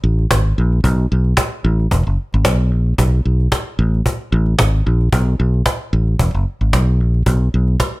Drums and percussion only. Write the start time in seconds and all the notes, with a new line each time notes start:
0.19 cajon slap
0.31 cajon bass, cajon slap
0.47 cajon slap
0.72 cajon slap
0.84 cajon bass
0.99 cajon slap
1.24 cajon slap
1.37 cajon bass, cajon slap
1.52 cajon slap
1.80 cajon slap
1.91 cajon bass
2.07 cajon slap
2.33 cajon slap
2.45 cajon bass, cajon slap
2.60 cajon slap
2.86 cajon slap
2.98 cajon bass
3.13 cajon slap
3.40 cajon slap
3.52 cajon bass, cajon slap
3.66 cajon slap
3.94 cajon slap
4.06 cajon bass
4.21 cajon slap
4.46 cajon slap
4.59 cajon bass, cajon slap
4.75 cajon slap
5.01 cajon slap
5.13 cajon bass
5.27 cajon slap
5.54 cajon slap
5.66 cajon bass, cajon slap
5.79 cajon slap
6.08 cajon slap
6.19 cajon bass
6.36 cajon slap
6.61 cajon slap
6.73 cajon bass, cajon slap
7.14 cajon slap
7.26 cajon bass
7.41 cajon slap
7.68 cajon slap
7.80 cajon bass, cajon slap
7.94 cajon slap